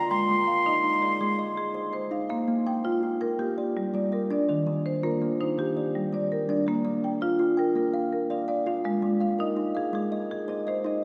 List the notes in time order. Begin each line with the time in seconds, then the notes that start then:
Already playing: F4 D5 G5 A#5
0.11 G#3 G5 C6
0.29 G#3
0.47 F5
0.66 D#4 D#5
0.84 D#4
1.02 G#4 D5 F5
1.21 G#3 G#4
1.39 D#5
1.57 G#4
1.75 C5
1.93 C5
2.11 D#4 F5
2.29 A#3 F5
2.48 A#3
2.67 G5
2.84 F4 C5 F5
3.03 F4
3.21 A#4 G5
3.39 A#3 G4
3.58 D5
3.77 G3
3.94 G3 D5
4.12 A#4 D5
4.30 D4 D5
4.49 D#3 D5
4.67 D#3
4.86 C5
5.03 A#3 F4 A#4
5.22 A#3
5.40 D#4 C5
5.58 D#3 G4
5.77 D5
5.95 G3
6.13 G3 D5
6.32 A#4
6.49 D4 D5
6.67 A#3 D5
6.85 A#3
7.04 G5
7.21 F4 C5 F5
7.39 F4
7.57 A#4 G5
7.76 A#3 A#4
7.94 F5
8.13 A#4
8.30 D5 F5
8.48 D5 F5
8.66 F4 F5
8.84 G#3 F5
9.02 G#3
9.21 F5
9.39 D#4 A#4 D#5
9.57 D#4
9.75 G#4 F5
9.93 G#3 G#4
10.12 D#5
10.31 G#4
10.48 C5 D#5
10.67 C5 D#5
10.84 D#4 D#5